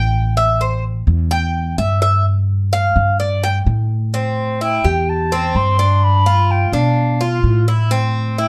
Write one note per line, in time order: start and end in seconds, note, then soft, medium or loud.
0.00 1.01 A1 medium
0.00 0.34 G5 loud
0.37 0.60 E5 medium
0.61 0.84 C5 medium
1.07 1.74 E2 medium
1.31 1.75 G5 loud
1.78 2.90 G2 medium
1.78 2.01 E5 medium
2.02 2.25 E5 medium
2.73 3.16 F5 medium
2.96 3.63 G2 medium
3.20 3.43 D5 medium
3.43 3.58 G5 loud
3.66 4.78 A2 loud
4.14 4.60 C4 medium
4.61 4.84 E4 medium
4.61 5.11 G5 loud
4.84 5.51 E2 loud
4.84 5.30 G4 medium
5.09 5.58 A5 loud
5.32 5.78 C4 medium
5.55 6.67 G2 medium
5.55 6.05 C6 loud
5.79 6.25 D4 medium
6.04 6.53 B5 loud
6.26 6.72 F4 medium
6.51 6.74 G5 loud
6.72 7.39 B2 medium
6.72 7.19 D4 medium
6.72 7.64 F5 medium
7.21 7.66 F4 medium
7.44 8.48 A2 medium
7.68 7.91 E4 medium
7.91 8.37 C4 medium
8.38 8.48 E4 medium
8.38 8.48 G5 medium